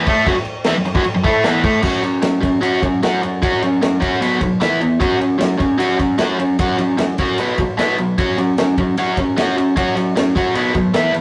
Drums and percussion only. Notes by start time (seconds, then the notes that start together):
0.06 kick, crash
0.26 kick, crash
0.36 snare
0.45 crash
0.64 snare, crash
0.85 crash
0.95 kick
1.04 crash
1.24 kick, crash
1.44 snare, crash
1.64 kick, crash
1.82 kick, crash
2.03 ride
2.22 snare, ride
2.43 kick, ride
2.63 ride
2.83 kick, ride
3.03 snare, ride
3.23 ride
3.43 kick, ride
3.62 ride
3.82 snare, ride
4.02 kick, ride
4.22 ride
4.41 kick, ride
4.61 snare, ride
4.81 ride
5.01 kick, ride
5.21 ride
5.40 snare, ride
5.60 kick, ride
5.80 ride
5.99 kick, ride
6.18 snare, ride
6.39 ride
6.59 kick, ride
6.78 ride
6.98 snare, ride
7.18 kick, ride
7.38 ride
7.58 kick, ride
7.79 snare, ride
7.98 ride
8.18 kick, ride
8.38 ride
8.58 snare, ride
8.78 kick, ride
8.97 ride
9.17 kick, ride
9.37 snare, ride
9.58 ride
9.77 kick, ride
9.97 ride
10.17 snare, ride
10.36 kick, ride
10.55 ride
10.74 kick, ride
10.94 snare, ride
11.14 ride